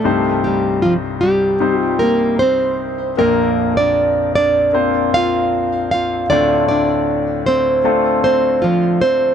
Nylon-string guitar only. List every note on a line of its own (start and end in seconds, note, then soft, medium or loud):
0.00 0.41 A3 medium
0.00 0.40 A4 medium
0.44 0.82 G3 medium
0.44 0.82 G4 medium
0.82 0.95 F3 medium
0.82 0.93 F4 medium
1.21 1.97 G3 medium
1.21 1.80 G4 loud
1.80 2.02 F4 loud
1.99 2.38 A#3 medium
1.99 2.39 A#4 medium
2.39 3.16 C4 medium
2.39 3.18 C5 loud
3.19 3.75 A#3 medium
3.19 3.77 A#4 loud
3.77 4.33 D4 medium
3.77 4.34 D5 loud
4.35 5.11 D4 medium
4.35 5.10 D5 loud
5.14 5.89 F4 medium
5.14 5.88 F5 loud
5.91 6.29 F4 medium
5.91 6.29 F5 loud
6.30 6.67 D4 medium
6.30 6.67 D5 loud
6.68 7.43 D4 medium
6.68 7.42 D5 medium
7.46 8.21 C4 medium
7.46 8.23 C5 loud
8.24 8.61 C4 medium
8.24 8.64 C5 loud
8.62 8.99 F3 medium
8.62 9.02 F4 loud
9.01 9.35 C4 medium
9.01 9.35 C5 loud